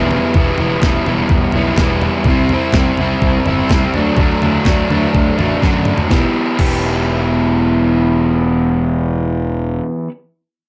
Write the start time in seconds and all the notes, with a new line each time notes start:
Already playing: E1 E3 G3 B3 E4
0.11 floor tom
0.34 E1 E3 G3 B3 E4, kick, floor tom
0.58 E1 B3 E4, floor tom
0.62 G3
0.82 E1 E3 G3, kick, snare, floor tom
0.86 B3 E4
1.06 E1 G3 B3 E4, floor tom
1.29 E1, kick, floor tom
1.52 B1 B3 E4, floor tom
1.58 G3
1.76 E1 E3, kick, snare, floor tom
1.81 G3 B3 E4
2.02 floor tom
2.24 C2 C3 G3, kick, floor tom
2.29 C4 E4
2.49 E4, floor tom
2.53 G3 C4
2.72 C2 C3, kick, snare, floor tom
2.77 G3 C4 E4
2.97 C2 C4 E4, floor tom
3.02 G3
3.21 C2, kick, floor tom
3.46 G1 C4 E4, floor tom
3.51 G3
3.69 C2 C3 G3 C4 E4, kick, snare, floor tom
3.94 D2 F#3 A3 D4, floor tom
3.98 D3
4.17 D2 D3 F#3 A3, kick, floor tom
4.21 D4
4.41 D2 F#3 A3 D4, floor tom
4.65 D2 D3 F#3, kick, snare, floor tom
4.69 A3 D4
4.90 D2 F#3 A3 D4, floor tom
5.14 D2, kick, floor tom
5.38 A1 F#3 A3 D4, floor tom
5.62 F#2 D3 F#3 A3 D4, kick, snare
5.74 high tom
5.85 mid tom
5.98 floor tom
6.09 E1 E3 B3 E4, kick, snare
6.13 G4
6.58 E1 E3 B3 E4 G4, kick, crash